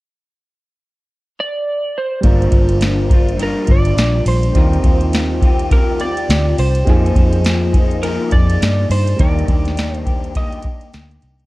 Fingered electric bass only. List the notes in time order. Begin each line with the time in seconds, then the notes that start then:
2.24 G1
2.52 G1
3.68 G1
3.97 A#1
4.26 A#1
4.55 D#2
4.84 D#2
6.29 D2
6.58 C2
6.87 F2
7.16 F2
8.32 F2
8.62 G2
8.90 G2
9.20 D#2
9.48 D#2
10.94 D2
11.23 C2